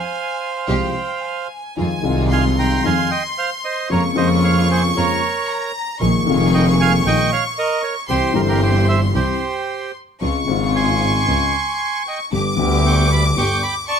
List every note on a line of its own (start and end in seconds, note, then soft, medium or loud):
0.00 1.48 C5 medium
0.00 1.47 F5 medium
0.00 0.69 G#5 medium
0.67 0.91 C2 medium
0.67 0.91 C3 medium
0.67 0.91 F3 medium
0.67 0.91 G#3 medium
0.67 0.91 C4 medium
0.67 0.91 F4 medium
0.67 0.91 G4 medium
0.67 1.19 G5 medium
1.22 1.76 G#5 medium
1.77 2.00 F2 soft
1.77 2.00 F2 medium
1.77 2.00 D#3 soft
1.77 2.00 F3 medium
1.77 2.00 G#3 soft
1.77 2.00 C4 soft
1.77 2.00 D#4 soft
1.77 2.00 F4 medium
1.77 2.27 G#5 medium
2.01 2.80 C2 medium
2.01 2.81 C2 loud
2.01 2.80 C3 medium
2.01 2.79 D#3 medium
2.01 2.80 G#3 medium
2.01 2.81 C4 medium
2.01 2.81 D#4 medium
2.01 2.81 F4 medium
2.31 2.44 F5 medium
2.31 2.44 G#5 medium
2.31 3.90 C6 loud
2.59 2.83 G5 medium
2.59 2.86 A#5 loud
2.83 3.06 F2 medium
2.83 3.07 F2 medium
2.83 3.06 D#3 soft
2.83 3.07 F3 medium
2.83 3.06 G#3 soft
2.83 3.07 G#3 medium
2.83 3.06 C4 soft
2.83 3.07 D#4 soft
2.83 3.07 F4 soft
2.83 3.07 F4 medium
2.83 3.10 F5 medium
2.83 3.10 G#5 medium
3.10 3.23 D#5 medium
3.10 3.22 G5 loud
3.38 3.50 C5 medium
3.38 3.50 F5 medium
3.64 3.89 C5 medium
3.64 3.89 D#5 medium
3.90 4.12 F2 medium
3.90 4.13 F2 medium
3.90 4.12 C#3 medium
3.90 4.12 F3 medium
3.90 4.12 G#3 soft
3.90 4.12 A#3 soft
3.90 4.12 C#4 soft
3.90 4.12 F4 medium
3.90 4.04 A#4 medium
3.90 4.03 C#5 medium
3.90 5.49 C#6 loud
4.14 4.92 F2 medium
4.14 4.93 F2 loud
4.14 4.91 C#3 medium
4.14 4.92 F3 loud
4.14 4.92 G#3 medium
4.14 4.92 A#3 medium
4.14 4.93 A#3 medium
4.14 4.92 C#4 medium
4.14 4.92 F4 medium
4.14 4.29 C5 medium
4.14 4.29 D#5 medium
4.18 4.93 F4 medium
4.44 4.68 C#5 medium
4.44 4.71 F5 medium
4.71 4.83 G#4 medium
4.71 4.83 C5 medium
4.95 5.18 F2 soft
4.95 5.19 F2 medium
4.95 5.18 C#3 soft
4.95 5.18 F3 medium
4.95 5.18 G#3 soft
4.95 5.18 A#3 soft
4.95 5.18 A#3 medium
4.95 5.18 C#4 soft
4.95 5.18 F4 medium
4.95 5.19 F4 medium
4.95 5.71 A#4 medium
4.95 5.71 C#5 medium
5.47 6.00 A#5 loud
6.01 6.23 A#1 medium
6.01 6.23 A#2 medium
6.01 6.23 D#3 medium
6.01 6.23 G#3 soft
6.01 6.23 A#3 medium
6.01 6.23 A#3 soft
6.01 6.23 D#4 soft
6.01 6.23 F4 medium
6.01 6.23 G#4 medium
6.01 8.05 C#6 loud
6.25 7.01 F1 loud
6.25 7.02 F1 medium
6.25 7.02 F2 loud
6.25 7.01 D#3 medium
6.25 7.01 G#3 medium
6.25 7.01 A#3 medium
6.25 7.02 A#3 medium
6.25 7.02 D#4 medium
6.25 7.02 G#4 loud
6.29 7.03 F4 medium
6.54 6.66 D#5 medium
6.54 6.66 G5 medium
6.81 6.93 F5 medium
6.81 6.92 G#5 loud
7.05 7.27 A#1 medium
7.05 7.27 A#2 medium
7.05 7.27 D#3 soft
7.05 7.27 G#3 soft
7.05 7.27 A#3 soft
7.05 7.27 A#3 medium
7.05 7.27 D#4 soft
7.05 7.27 F4 medium
7.05 7.27 G#4 medium
7.05 7.31 D#5 medium
7.05 7.30 G5 loud
7.32 7.44 C#5 medium
7.32 7.44 F5 loud
7.59 7.82 A#4 medium
7.59 7.82 D#5 loud
7.83 7.95 A#4 medium
7.83 7.95 C#5 medium
8.09 8.31 C2 medium
8.09 8.32 C2 medium
8.09 8.31 C3 medium
8.09 8.31 E3 medium
8.09 8.31 G3 soft
8.09 8.31 C4 soft
8.09 8.32 C4 soft
8.09 8.31 E4 soft
8.09 8.31 G4 medium
8.09 8.33 G4 medium
8.09 8.37 C5 loud
8.09 9.95 C6 medium
8.32 9.10 G1 medium
8.32 9.10 G1 loud
8.32 9.10 G2 medium
8.32 9.09 E3 medium
8.32 9.10 G3 medium
8.32 9.10 C4 medium
8.32 9.10 E4 medium
8.32 8.41 G4 medium
8.32 9.10 G4 medium
8.32 8.41 A#4 medium
8.37 9.11 G4 medium
8.41 8.48 C5 medium
8.49 8.61 G4 medium
8.49 8.61 A#4 medium
8.62 8.87 G4 medium
8.62 8.87 C5 medium
8.88 9.00 C5 medium
8.88 9.00 E5 medium
9.14 9.37 C2 medium
9.14 9.37 C2 soft
9.14 9.37 C3 soft
9.14 9.37 E3 soft
9.14 9.37 G3 soft
9.14 9.36 C4 medium
9.14 9.37 C4 soft
9.14 9.36 E4 soft
9.14 9.37 G4 medium
9.14 9.37 G4 soft
9.14 9.91 G4 medium
9.14 9.92 C5 medium
10.20 10.44 C#2 medium
10.20 10.44 C#3 medium
10.20 10.44 G#3 soft
10.20 10.44 C4 medium
10.20 10.44 C4 soft
10.20 10.44 C#4 soft
10.20 10.44 F4 medium
10.20 12.27 C#6 loud
10.46 11.24 G#1 medium
10.46 11.24 G#1 loud
10.46 11.24 G#2 loud
10.46 11.23 C#3 medium
10.46 11.24 G#3 medium
10.46 11.24 C4 medium
10.46 11.24 F4 medium
10.46 11.25 F4 medium
10.76 12.03 G#5 medium
10.76 12.03 C6 medium
11.27 11.50 C#2 medium
11.27 11.50 C#3 medium
11.27 11.50 G#3 soft
11.27 11.50 C4 soft
11.27 11.50 C#4 medium
11.27 11.50 F4 soft
11.27 11.50 F4 medium
12.07 12.20 D#5 medium
12.07 12.19 G5 medium
12.32 12.54 G1 medium
12.32 12.54 G2 medium
12.32 12.54 D3 soft
12.32 12.54 G3 soft
12.32 12.54 B3 medium
12.32 12.54 B3 soft
12.32 12.54 D4 soft
12.32 12.54 G4 medium
12.32 13.85 D6 loud
12.56 13.33 D2 loud
12.56 13.33 D2 medium
12.56 13.33 D3 loud
12.56 13.33 G3 medium
12.56 13.33 B3 medium
12.56 13.33 D4 medium
12.56 13.33 G4 medium
12.61 13.34 G4 medium
12.86 13.10 G5 medium
12.86 13.12 C#6 medium
13.11 13.24 B5 medium
13.11 13.23 D6 medium
13.36 13.59 G1 medium
13.36 13.59 G2 medium
13.36 13.58 D3 soft
13.36 13.59 G3 soft
13.36 13.59 B3 soft
13.36 13.59 B3 medium
13.36 13.59 D4 medium
13.36 13.59 G4 medium
13.36 13.62 G5 medium
13.36 13.64 C#6 loud
13.63 13.75 G5 medium
13.63 13.75 B5 medium
13.88 14.00 D5 medium
13.88 14.00 A5 medium
13.88 14.00 C#6 loud